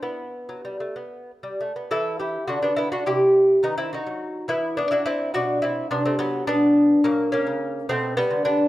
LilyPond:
<<
  \new Staff \with { instrumentName = "Lute" } { \time 6/8 \key e \minor \tempo 4. = 70 b2~ b8 r8 | a'8 g'8 fis'16 d'16 e'16 fis'16 g'4 | dis'16 e'16 fis'4 e'8 d'16 fis'16 e'8 | fis'8 e'8 d'16 c'16 b8 d'4 |
ais8 cis'4 c'8 b8 d'8 | }
  \new Staff \with { instrumentName = "Lute" } { \time 6/8 \key e \minor << { e'4. r4. | e'8 e'8 d'16 b16 b16 d'16 e'4 | b16 c'16 dis'4 b8 b16 d'16 c'8 | d'8 c'8 b16 a16 fis8 b4 |
fis8 ais4 a8 g8 b8 | } \\ { r8. fis16 g16 a16 b8. g16 a16 b16 | e4 d4 c4 | dis8. fis8. e8. e'8. | b,4 c4 b,4 |
ais,8. cis8. b,8. d8. | } >> }
>>